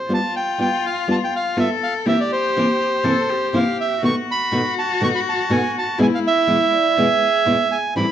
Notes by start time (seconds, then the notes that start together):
Already playing: C5
0.09 G3 B3 F4
0.14 A5
0.36 G5
0.58 G3 B3 F4 G5
0.86 F5
1.08 G3 B3 F4 A5
1.24 G5
1.36 F5
1.57 G3 B3 F4 A4 E5
1.83 F5
2.06 C3 E3 A#3 C4 E4 G4 E5
2.21 D5
2.32 C5
2.56 C3 E3 A#3 C4 E4
3.04 C3 E3 A#3 C4 E4 A4
3.29 G4
3.53 C3 E3 A#3 C4 E4 F5
3.81 E5
4.02 B2 D#3 A3 B3 F#4 C#6
4.31 B5
4.52 B2 D#3 A3 B3 F#4
4.79 A5
5.01 B2 D#3 A3 B3 F#4 C#6
5.15 B5
5.29 A5
5.50 B2 D#3 A3 B3 F#4 G#5
5.78 A5
5.98 E2 B2 E3 G#3 B3 E4
6.02 G#5
6.15 F5
6.27 E5
6.47 E2 B2 E3 G#3 B3 E4
6.72 D5
6.97 E2 B2 E3 G#3 B3 E4 G#4 B4
7.09 G#4
7.45 E2 B2 E3 G#3 B3 E4
7.72 G#5
7.95 A2 E3 G3 C4 E4 B5